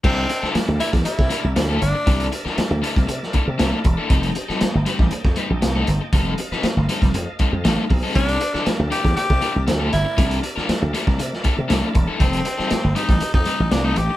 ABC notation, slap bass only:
X:1
M:4/4
L:1/16
Q:1/4=118
K:C
V:1 name="Slap bass" clef=bass
C,,2 z3 D,, z E,, z C, z C,, D,,2 G,,, z | C,,2 z3 D,, z C,, C, z2 C, C,, z E,,, z | F,,,2 z3 G,,, z A,,, z F,, z _B,,, C,,2 G,,, z | F,,,2 z3 G,,, z F,,, F,, z2 F,, A,,, z B,,, z |
C,,2 z3 D,, z E,, z C, z C,, D,,2 G,,, z | C,,2 z3 D,, z C,, C, z2 C, C,, z E,,, z | F,,,2 z3 G,,, z A,,, z F,, z A,,, C,,2 A,,, z |]